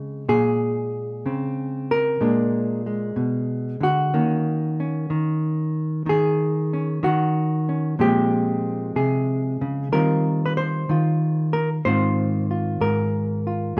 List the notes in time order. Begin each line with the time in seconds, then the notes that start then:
Already playing: C#3 G#3 C4 A#4
0.29 A#2 G#4
1.26 C#3 C4
1.91 A#4
2.21 A#2 G#3 D4
2.86 G#3
3.16 B2
3.80 D3 F#4
4.14 D#3 A#3 C#4
4.80 C#4
5.10 D#3
6.06 D#3 G#4
6.73 C#4
7.03 D#3 F#4
7.69 C#4
7.99 A#2 F3 G#3 C4 G4
8.96 C3 G#4
9.61 C#3
9.92 D#3 G3 C4 F4 A#4
10.46 B4
10.57 C5
10.89 D#3 F4
11.53 A#4
11.85 G#2 D#3 C4 F4 C5
12.51 F4
12.81 G#2 A#4
13.47 F4
13.77 G#2